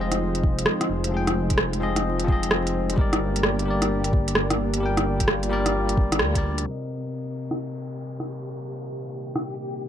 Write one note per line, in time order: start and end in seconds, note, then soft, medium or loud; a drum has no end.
0.00 0.65 F1 loud
0.00 1.09 F3 medium
0.00 2.94 G#3 medium
0.00 1.11 C4 medium
0.00 2.93 D#4 medium
0.00 2.94 F4 medium
0.00 1.14 G#4 medium
0.00 2.93 C5 medium
0.00 1.83 D#5 loud
0.12 cross-stick soft
0.12 closed hi-hat medium
0.35 closed hi-hat soft
0.43 kick loud
0.59 closed hi-hat medium
0.66 cross-stick loud
0.81 cross-stick medium
0.81 closed hi-hat soft
0.90 1.11 F1 loud
1.04 closed hi-hat medium
1.09 1.58 F1 loud
1.09 1.78 F3 medium
1.09 1.79 C4 medium
1.14 1.81 G#4 medium
1.14 1.82 G5 medium
1.27 cross-stick medium
1.27 closed hi-hat soft
1.50 kick medium
1.50 closed hi-hat medium
1.58 2.97 F1 medium
1.58 cross-stick loud
1.73 closed hi-hat soft
1.80 2.23 F3 loud
1.80 2.26 C4 medium
1.80 2.26 G#4 medium
1.80 2.27 D#5 loud
1.96 cross-stick medium
1.96 closed hi-hat medium
2.20 closed hi-hat soft
2.24 2.94 F3 loud
2.24 2.95 C4 medium
2.24 kick loud
2.29 2.96 G#4 medium
2.29 2.98 D#5 loud
2.43 closed hi-hat medium
2.51 cross-stick loud
2.67 closed hi-hat soft
2.90 3.61 G3 medium
2.90 closed hi-hat medium
2.96 3.43 G1 loud
2.96 6.63 A#3 medium
2.96 6.63 D4 medium
2.96 3.64 G4 medium
2.96 4.81 G4 medium
2.96 3.65 A#4 medium
2.96 6.63 D5 medium
2.96 kick loud
3.01 3.67 D5 loud
3.13 cross-stick medium
3.13 closed hi-hat soft
3.36 closed hi-hat medium
3.43 4.81 G1 medium
3.43 cross-stick loud
3.59 4.76 G3 medium
3.59 closed hi-hat soft
3.65 4.79 G4 medium
3.65 4.81 A#4 medium
3.71 4.82 D5 medium
3.82 cross-stick medium
3.82 closed hi-hat medium
4.04 closed hi-hat soft
4.13 kick loud
4.28 closed hi-hat medium
4.35 cross-stick loud
4.50 cross-stick medium
4.50 closed hi-hat soft
4.74 5.47 G3 medium
4.74 closed hi-hat medium
4.80 5.27 G1 loud
4.80 6.65 F4 medium
4.80 5.48 G4 medium
4.80 5.50 A#4 medium
4.86 5.51 G5 medium
4.97 cross-stick medium
4.97 closed hi-hat soft
5.20 kick medium
5.20 closed hi-hat medium
5.28 6.22 G1 medium
5.28 cross-stick loud
5.43 closed hi-hat soft
5.49 5.94 G3 loud
5.49 5.95 G4 medium
5.49 5.96 A#4 medium
5.49 5.96 D5 loud
5.66 cross-stick medium
5.66 closed hi-hat medium
5.89 closed hi-hat soft
5.97 kick loud
6.12 cross-stick medium
6.12 closed hi-hat medium
6.19 6.66 D2 loud
6.19 cross-stick loud
6.34 6.64 G3 medium
6.34 6.64 G4 medium
6.34 6.65 A#4 medium
6.34 kick medium
6.34 closed hi-hat soft
6.38 6.66 D5 medium
6.58 closed hi-hat medium
6.63 9.88 C3 medium
6.63 9.88 A#3 medium
6.63 9.88 C4 medium
6.63 9.88 D#4 medium
6.63 9.88 G4 medium
6.63 9.88 C5 medium
6.63 downlifter medium
6.68 9.88 A#4 medium
6.68 9.88 D#5 medium
7.51 cross-stick medium
8.20 cross-stick soft
9.36 cross-stick medium